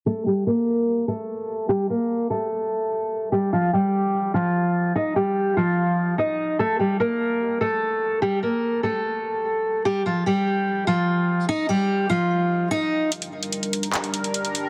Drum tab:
HH |----------------|----------------|----------------|----------------|
CP |----------------|----------------|----------------|----------------|

HH |----------------|----------------|----------------|----------------|
CP |----------------|----------------|----------------|----------------|

HH |xx-xxxxxxxxxxxx-|
CP |--------x-------|